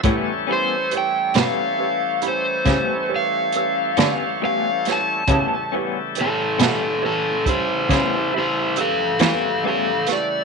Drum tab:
HH |x-xx-xx-xx-x|x-xx-xx-xx-x|
SD |---o--o--o-o|---o--o--o-o|
BD |o-----o-----|o----oo-----|